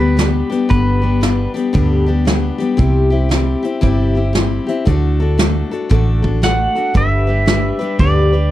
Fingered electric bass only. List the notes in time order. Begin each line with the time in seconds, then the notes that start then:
Already playing: D2
0.71 G1
1.75 D2
2.79 C2
3.84 G1
4.87 D2
5.91 A1
6.95 G1
8.00 D2